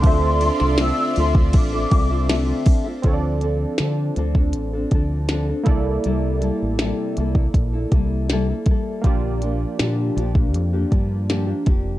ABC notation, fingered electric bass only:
X:1
M:4/4
L:1/16
Q:1/4=80
K:Dm
V:1 name="Fingered electric bass" clef=bass
D,,3 C,,2 z D,,2 A,,,2 C,,4 z2 | D,,4 D,2 D,,2 A,,,2 D,,4 C,,2 | C,,3 A,,,2 z C,,2 B,,,2 C,,4 z2 | B,,,4 B,,2 B,,,2 F,,2 G,,4 F,,,2 |]